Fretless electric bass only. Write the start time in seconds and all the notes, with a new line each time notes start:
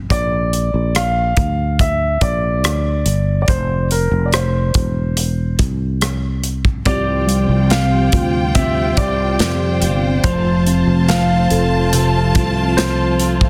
0.10 A#1
0.74 A#1
1.37 D2
2.22 A#1
2.64 D2
3.06 G1
3.48 F1
4.11 F1
4.75 E1
5.59 C2
6.86 C2
7.49 C2
8.13 D2
8.97 C2
9.40 F2
9.82 G1
10.24 F1
10.87 F1
11.51 F1
12.36 C2